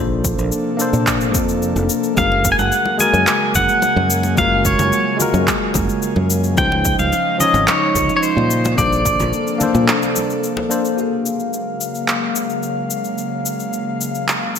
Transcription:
Already playing: fingered electric bass A#1, analog synth pad C3 F3 A#3 D4 A4, tine electric piano A#3 D4 A4
0.00 tine electric piano C5
0.24 kick, cabasa
0.38 fingered electric bass A#1, cabasa
0.52 cabasa
0.77 tine electric piano A#3 D4 A4, cabasa
0.81 tine electric piano C5
0.93 fingered electric bass A#2, cabasa
1.07 kick, clap, cabasa
1.21 cabasa
1.34 fingered electric bass F2, kick, cabasa
1.49 cabasa
1.62 cabasa
1.76 fingered electric bass F1, cabasa
1.89 cabasa
2.03 cabasa
2.15 fingered electric bass F#1, analog synth pad C#3 F#3 G#3 G#5, tine electric piano G#3 F#4 G#4, pedal steel guitar F5, kick, high conga, cabasa
2.20 tine electric piano A#4
2.32 muted conga
2.45 kick, cabasa
2.52 pedal steel guitar G#5
2.59 fingered electric bass F#1, pedal steel guitar F#5, high conga, cabasa
2.72 cabasa
2.85 muted conga
2.97 tine electric piano G#3 F#4 G#4, pedal steel guitar G#5, low conga, cabasa
3.02 tine electric piano A#4
3.14 fingered electric bass F#2, high conga, cabasa
3.27 clap, muted conga, cabasa
3.55 fingered electric bass F#1, pedal steel guitar F#5, kick, high conga, low conga, cabasa
3.69 cabasa
3.82 muted conga, cabasa
3.96 fingered electric bass F#2, high conga
4.10 cabasa
4.23 muted conga, cabasa
4.35 fingered electric bass F#1, tine electric piano G#3 F4 F#4, pedal steel guitar F5, kick, high conga, cabasa
4.40 tine electric piano A#4
4.65 pedal steel guitar C#5, kick, cabasa
4.79 fingered electric bass F#1, muted conga, high conga, low conga, cabasa
4.92 cabasa
5.17 tine electric piano G#3 F4 F#4, muted conga, low conga, cabasa
5.22 tine electric piano A#4
5.34 fingered electric bass F#2, high conga, cabasa
5.48 kick, clap, cabasa
5.74 fingered electric bass F#1, kick, muted conga, high conga, cabasa
5.89 cabasa
6.02 cabasa
6.16 fingered electric bass F#2, muted conga, high conga
6.30 cabasa
6.44 cabasa
6.55 fingered electric bass C#2, tine electric piano F3 C#4 D#4, analog synth pad F3 D#4 D#5, pedal steel guitar G5, kick, high conga, cabasa
6.59 tine electric piano C5
6.72 muted conga
6.85 kick, cabasa
6.99 fingered electric bass C#2, pedal steel guitar F5, high conga, cabasa
7.13 muted conga, cabasa
7.38 tine electric piano F3 C#4 D#4, pedal steel guitar D#5, low conga, cabasa
7.43 tine electric piano C#5
7.54 fingered electric bass G#1, high conga, cabasa
7.68 pedal steel guitar C#5, clap, muted conga, cabasa
7.95 fingered electric bass C#2, kick, high conga, low conga, cabasa
8.09 muted conga, cabasa
8.16 pedal steel guitar C#5
8.23 pedal steel guitar C5, cabasa
8.37 fingered electric bass A#2, high conga
8.50 analog synth pad C3 A#3 D4 A4, cabasa
8.64 muted conga, cabasa
8.75 fingered electric bass A#1, tine electric piano A#3 D4 A4, pedal steel guitar D5, kick, high conga, cabasa
8.80 tine electric piano C5
8.92 cabasa
9.05 kick, muted conga, cabasa
9.20 fingered electric bass A#1, high conga, low conga, cabasa
9.33 cabasa
9.47 cabasa
9.58 tine electric piano A#3 D4 A4, muted conga, low conga, cabasa
9.63 tine electric piano C5
9.75 fingered electric bass A#2, high conga, cabasa
9.88 clap, cabasa
10.02 muted conga, cabasa
10.16 high conga, cabasa
10.30 cabasa
10.44 cabasa
10.57 muted conga, high conga
10.69 tine electric piano A#3 D4 A4 C5, cabasa
10.85 cabasa
10.96 analog synth pad C#3 F#3 G#3 A#3 F5, tine electric piano A#3 F#4 G#4, cabasa
11.00 tine electric piano F5
11.26 cabasa
11.40 cabasa
11.53 cabasa
11.81 cabasa
11.95 cabasa
12.08 clap, cabasa
12.36 cabasa
12.50 cabasa
12.63 cabasa
12.90 cabasa
13.04 cabasa
13.18 cabasa
13.46 cabasa
13.60 cabasa
13.73 cabasa
14.01 cabasa
14.15 cabasa
14.28 clap, cabasa
14.56 cabasa

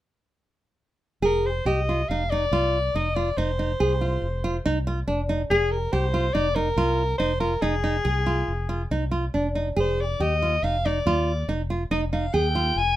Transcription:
1.22 fretless electric bass F1, nylon-string guitar G#4, soprano saxophone A#4
1.46 soprano saxophone C5
1.65 fretless electric bass C2, nylon-string guitar G4, soprano saxophone D#5
1.89 nylon-string guitar F4
2.08 fretless electric bass F1, nylon-string guitar D#4, soprano saxophone F5
2.30 nylon-string guitar D#4, soprano saxophone D5
2.51 fretless electric bass C2, nylon-string guitar F4
2.94 fretless electric bass F1, nylon-string guitar D#4, soprano saxophone D#5
3.15 nylon-string guitar F4, soprano saxophone D5
3.37 fretless electric bass F1, nylon-string guitar D#4, soprano saxophone C5
3.59 nylon-string guitar D#4
3.80 fretless electric bass C2, nylon-string guitar G#4
4.01 nylon-string guitar F4
4.22 fretless electric bass F1
4.44 nylon-string guitar F4
4.66 fretless electric bass C2, nylon-string guitar D#4
4.87 nylon-string guitar F4
5.07 fretless electric bass F1, nylon-string guitar D4
5.29 nylon-string guitar D#4
5.50 fretless electric bass F1, soprano saxophone G#4, nylon-string guitar G#4
5.71 soprano saxophone A#4
5.92 fretless electric bass C2, nylon-string guitar G4, soprano saxophone C5
6.14 nylon-string guitar F4
6.33 fretless electric bass F1, nylon-string guitar D#4, soprano saxophone D5
6.55 nylon-string guitar D#4, soprano saxophone A#4
6.76 fretless electric bass C2, nylon-string guitar F4
7.18 fretless electric bass F1, nylon-string guitar D#4, soprano saxophone C5
7.40 nylon-string guitar F4, soprano saxophone A#4
7.61 fretless electric bass F1, nylon-string guitar D#4, soprano saxophone G#4
7.84 nylon-string guitar D#4
8.05 fretless electric bass C2, nylon-string guitar G#4
8.26 nylon-string guitar F4
8.48 fretless electric bass F1
8.69 nylon-string guitar F4
8.91 fretless electric bass C2, nylon-string guitar D#4
9.11 nylon-string guitar F4
9.34 fretless electric bass F1, nylon-string guitar D4
9.55 nylon-string guitar D#4
9.76 fretless electric bass F1, nylon-string guitar G#4, soprano saxophone C5
10.01 soprano saxophone D5
10.20 fretless electric bass D#2, nylon-string guitar G4, soprano saxophone D#5
10.42 nylon-string guitar F4
10.63 fretless electric bass F1, nylon-string guitar D#4, soprano saxophone F5
10.86 nylon-string guitar D#4, soprano saxophone D5
11.06 fretless electric bass D#2, nylon-string guitar F4
11.48 fretless electric bass F1, nylon-string guitar D#4
11.70 nylon-string guitar F4
11.91 fretless electric bass F1, nylon-string guitar D#4, soprano saxophone D#5
12.13 nylon-string guitar D#4, soprano saxophone F5
12.33 fretless electric bass D#2, nylon-string guitar G#4, soprano saxophone G5
12.55 nylon-string guitar F4
12.76 fretless electric bass F1, soprano saxophone G#5

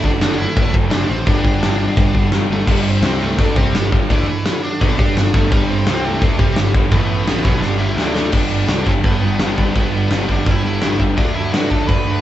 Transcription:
Already playing: distorted electric guitar D3, overdriven electric guitar F#3 A3 D4 A4
0.04 picked electric bass F#1, lead electric guitar D4 D5, kick
0.21 picked electric bass F#1, lead electric guitar D4 D5, snare, crash
0.38 lead electric guitar E4 E5
0.56 picked electric bass F#1, kick, crash
0.74 picked electric bass F#1, kick
0.91 picked electric bass F#1, lead electric guitar D4 D5, snare, crash
1.08 picked electric bass A1, lead electric guitar C4 C5
1.26 picked electric bass G1, distorted electric guitar G2 D3, overdriven electric guitar G3 B3 D4 G4, lead electric guitar D4 D5, kick, crash
1.45 kick
1.62 picked electric bass G1, snare, crash
1.97 picked electric bass G1, kick, crash
2.14 picked electric bass G1, kick
2.32 picked electric bass G1, snare, crash
2.50 picked electric bass G1, lead electric guitar A3
2.54 lead electric guitar A4
2.67 picked electric bass G1, overdriven electric guitar G2 D3 G3, lead electric guitar G3, kick, crash
2.72 lead electric guitar G4
2.88 lead electric guitar C4 C5
3.02 picked electric bass C2, overdriven electric guitar C3 G3 C4, snare, crash
3.22 lead electric guitar A3 A4
3.38 picked electric bass D2, overdriven electric guitar D3 A3 D4, kick, crash
3.56 picked electric bass C2, overdriven electric guitar C3 G3 C4, lead electric guitar G3 G4, kick
3.74 picked electric bass G1, overdriven electric guitar G2 D3, snare, crash
3.92 picked electric bass G1, overdriven electric guitar G2 D3 G3, kick
4.10 picked electric bass D2, overdriven electric guitar D3 A3 D4, lead electric guitar E3 E4, kick, crash
4.45 snare, crash
4.63 lead electric guitar D4 D5
4.81 picked electric bass B1, overdriven electric guitar B2 F#3 B3, lead electric guitar D4 D5, kick, crash
4.98 picked electric bass G2, overdriven electric guitar G3 D4 G4, kick
5.16 picked electric bass G1, overdriven electric guitar G2 D3, snare, crash
5.34 picked electric bass G1, overdriven electric guitar G2 D3 G3, lead electric guitar A3 A4, kick
5.51 picked electric bass G1, overdriven electric guitar G2 D3 G3, lead electric guitar G3 G4, kick, crash
5.70 lead electric guitar C4 C5
5.86 picked electric bass C2, overdriven electric guitar C3 G3 C4, snare, crash
6.05 lead electric guitar A3 A4
6.22 picked electric bass D2, overdriven electric guitar D3 A3 D4, kick, crash
6.37 picked electric bass C2, overdriven electric guitar C3 G3 C4, lead electric guitar G3 G4, kick
6.56 picked electric bass G1, overdriven electric guitar G2 D3, snare, crash
6.74 picked electric bass G1, overdriven electric guitar G2 D3 G3, kick
6.91 picked electric bass A1, overdriven electric guitar A2 E3 A3, lead electric guitar B3 B4, kick, crash
7.27 snare, crash
7.43 picked electric bass B1, overdriven electric guitar B2 F#3 B3, lead electric guitar E3 E4, kick
7.61 picked electric bass G1, overdriven electric guitar G2 D3 G3, lead electric guitar D4 D5, snare
7.79 lead electric guitar E4 E5
7.96 picked electric bass D2, overdriven electric guitar D3 A3 D4, snare
8.14 lead electric guitar A3 A4, snare
8.32 picked electric bass G1, overdriven electric guitar G2 D3 G3 B3 D4, lead electric guitar D4 D5, kick, crash
8.50 overdriven electric guitar G2 D3 G3 B3 D4
8.67 picked electric bass C2, overdriven electric guitar G2 D3 G3 B3 D4, snare, crash
8.86 picked electric bass G1, overdriven electric guitar G2 D3 G3 B3 D4, lead electric guitar C4 C5, kick
9.04 picked electric bass G1, overdriven electric guitar G2 D3 G3 B3 D4, lead electric guitar B3 B4, kick, crash
9.22 picked electric bass G1, overdriven electric guitar G2 D3 G3 B3 D4
9.39 picked electric bass G1, overdriven electric guitar G2 D3 G3 B3 D4, snare, crash
9.58 picked electric bass G1, overdriven electric guitar G2 D3 G3 B3 D4, kick
9.75 picked electric bass G1, overdriven electric guitar G2 D3 G3 B3 D4, lead electric guitar B3 B4, kick, crash
9.93 overdriven electric guitar G2 D3 G3 B3 D4
10.11 picked electric bass G1, overdriven electric guitar G2 D3 G3 B3 D4, snare, crash
10.28 picked electric bass G1, overdriven electric guitar G2 D3 G3 B3 D4, lead electric guitar D4 D5, kick
10.45 picked electric bass G1, overdriven electric guitar G2 D3 G3 B3 D4, kick, crash
10.50 lead electric guitar E4 E5
10.63 picked electric bass G1, overdriven electric guitar G2 D3 G3 B3 D4
10.81 picked electric bass G1, overdriven electric guitar G2 D3 G3 B3 D4, snare, crash
10.98 picked electric bass G1, overdriven electric guitar G2 D3 G3 B3 D4, kick
11.16 picked electric bass D2, overdriven electric guitar D3 F#3 A3 D4, lead electric guitar D4 D5, kick, crash
11.34 overdriven electric guitar D3 F#3 A3 D4, lead electric guitar E4 E5
11.52 picked electric bass G2, overdriven electric guitar D3 F#3 A3 D4, lead electric guitar F#4 F#5, snare, crash
11.70 picked electric bass D2, overdriven electric guitar D3 F#3 A3 D4, lead electric guitar A4 A5, kick
11.87 picked electric bass D2, overdriven electric guitar D3 F#3 A3 D4, lead electric guitar B4 B5, kick, crash
12.06 picked electric bass D2, overdriven electric guitar D3 F#3 A3 D4

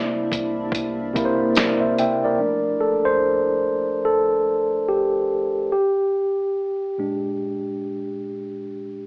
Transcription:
Already playing: tine electric piano C3 A#3 E4 C5 D5 E5, ambient pad C3 A#3 D4 E4
0.32 sub bass C2, kick, closed hi-hat
0.72 kick, closed hi-hat
1.13 tine electric piano C3 A#3 E4, kick, closed hi-hat
1.19 tine electric piano A#4
1.25 tine electric piano C5
1.55 sub bass A#1, tine electric piano D5, finger snap, snare, closed hi-hat, tambourine
1.60 tine electric piano A#4
1.80 tine electric piano C5 E5
1.98 sub bass E1, tine electric piano E5 G5, closed hi-hat
2.24 tine electric piano A#4 D5
2.39 tine electric piano F3 A3 D4
2.81 tine electric piano A4
3.05 tine electric piano C5
4.05 tine electric piano A4
4.88 tine electric piano G4
5.72 tine electric piano G4
6.98 tine electric piano A#2 G#3 D4

